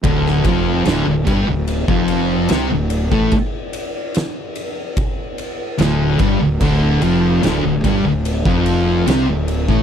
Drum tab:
CC |----------------|----------------|x---------------|
RD |x-x-x-x-x-x-x-x-|x-x-x-x-x-x-x-x-|--x-x-x-x-x-x-x-|
SD |-o--o-------o---|----o-------o---|----o-------o---|
BD |o-o---o--o-----o|o-------o-----o-|o-----o--o-----o|